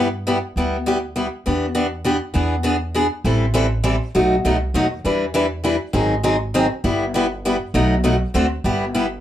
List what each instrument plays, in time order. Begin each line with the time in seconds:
Already playing: upright bass G2
0.27 steel-string acoustic guitar G3 B3 E4 G4
0.56 upright bass D2, steel-string acoustic guitar G3 B3 E4 G4
0.86 steel-string acoustic guitar G3 B3 E4 G4
1.16 steel-string acoustic guitar G3 B3 E4 G4
1.46 upright bass E2, steel-string acoustic guitar E3 B3 D4 G4
1.75 steel-string acoustic guitar E3 B3 D4 G4
2.04 steel-string acoustic guitar E3 B3 D4 G4
2.34 upright bass E2, steel-string acoustic guitar E3 B3 D4 G#4
2.63 steel-string acoustic guitar E3 B3 D4 G#4
2.95 steel-string acoustic guitar E3 B3 D4 G#4
3.24 upright bass A1, steel-string acoustic guitar E3 G3 C4 E4 A4
3.54 steel-string acoustic guitar E3 G3 C4 E4 A4
3.84 steel-string acoustic guitar E3 G3 C4 E4 A4
4.15 upright bass B1, steel-string acoustic guitar B2 F#3 A3 D#4 F#4
4.44 upright bass C2, steel-string acoustic guitar B2 F#3 A3 D#4 F#4
4.74 upright bass D#2, steel-string acoustic guitar B2 F#3 A3 D#4 F#4
5.04 upright bass E2, steel-string acoustic guitar E3 G3 D4 E4 B4
5.34 steel-string acoustic guitar E3 G3 D4 E4 B4
5.64 steel-string acoustic guitar E3 G3 D4 E4 B4
5.93 upright bass G#1, steel-string acoustic guitar D#3 F#3 C4 D#4 G#4
6.23 steel-string acoustic guitar D#3 F#3 C4 D#4 G#4
6.54 steel-string acoustic guitar D#3 F#3 C4 D#4 G#4
6.84 upright bass G1, steel-string acoustic guitar G3 B3 E4 G4
7.14 steel-string acoustic guitar G3 B3 E4 G4
7.45 steel-string acoustic guitar G3 B3 E4 G4
7.74 upright bass B1, steel-string acoustic guitar B2 F#3 A3 D#4 F#4
8.04 steel-string acoustic guitar B2 F#3 A3 D#4 F#4
8.34 upright bass D2, steel-string acoustic guitar D3 A3 C4 F#4 A4
8.64 upright bass G1, steel-string acoustic guitar G3 B3 E4 G4
8.95 steel-string acoustic guitar G3 B3 E4 G4